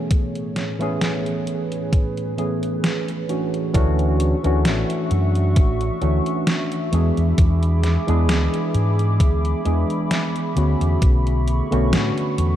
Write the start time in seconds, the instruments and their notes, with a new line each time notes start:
Already playing: tine electric piano E3 A3 B3 C#4 G#4, ambient pad C#5
0.11 ambient pad A2 G#4 B4, kick, closed hi-hat
0.35 closed hi-hat
0.56 snare, closed hi-hat
0.79 tine electric piano E3 A3 B3 C#4 G#4, closed hi-hat
1.01 snare, closed hi-hat
1.26 closed hi-hat
1.47 closed hi-hat
1.72 closed hi-hat
1.93 kick, closed hi-hat
2.17 closed hi-hat
2.37 tine electric piano E3 A3 B3 C#4 G#4, closed hi-hat
2.63 closed hi-hat
2.84 snare, closed hi-hat
3.08 closed hi-hat
3.28 tine electric piano E3 A3 C#4 D4 F#4, closed hi-hat
3.54 closed hi-hat
3.74 fingered electric bass D2, tine electric piano E3 A3 C#4 D4 F#4, ambient pad F#4 E5 C#6, kick, closed hi-hat
3.99 closed hi-hat
4.20 closed hi-hat
4.43 fingered electric bass D2, tine electric piano E3 A3 C#4 D4 F#4, closed hi-hat
4.65 fingered electric bass A1, snare, closed hi-hat
4.90 closed hi-hat
5.11 fingered electric bass F#2, closed hi-hat
5.35 closed hi-hat
5.56 fingered electric bass A1, kick, closed hi-hat
5.81 closed hi-hat
6.01 fingered electric bass D2, tine electric piano E3 A3 C#4 D4 F#4, closed hi-hat
6.26 closed hi-hat
6.47 snare, closed hi-hat
6.72 closed hi-hat
6.91 fingered electric bass E2, tine electric piano E3 G#3 B3 D4 G#4, ambient pad G#4 B5 D6, closed hi-hat
7.17 fingered electric bass E2, closed hi-hat
7.38 fingered electric bass E2, kick, closed hi-hat
7.63 closed hi-hat
7.84 snare, closed hi-hat
8.07 fingered electric bass E2, tine electric piano E3 G#3 B3 D4 G#4, closed hi-hat
8.29 fingered electric bass D2, snare, closed hi-hat
8.54 closed hi-hat
8.75 fingered electric bass G#2, closed hi-hat
8.99 closed hi-hat
9.20 fingered electric bass D2, kick, closed hi-hat
9.45 closed hi-hat
9.65 fingered electric bass E2, tine electric piano E3 G#3 B3 D4 G#4, closed hi-hat
9.90 closed hi-hat
10.11 snare, closed hi-hat
10.36 closed hi-hat
10.55 fingered electric bass D2, tine electric piano D3 A3 B3 C#4 F#4, closed hi-hat
10.81 fingered electric bass E2, closed hi-hat
11.02 fingered electric bass B1, ambient pad A3 C#6, kick, closed hi-hat
11.27 closed hi-hat
11.48 closed hi-hat
11.71 fingered electric bass B1, tine electric piano D3 A3 B3 C#4 F#4, closed hi-hat
11.93 fingered electric bass A2, snare, closed hi-hat
12.18 closed hi-hat
12.38 fingered electric bass E2, closed hi-hat